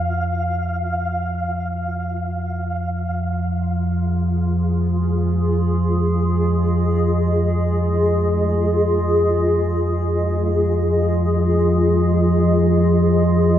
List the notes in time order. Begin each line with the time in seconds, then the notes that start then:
Already playing: F2 F3 F5
3.09 F2 F3 F4
3.73 G#4
5.95 D#5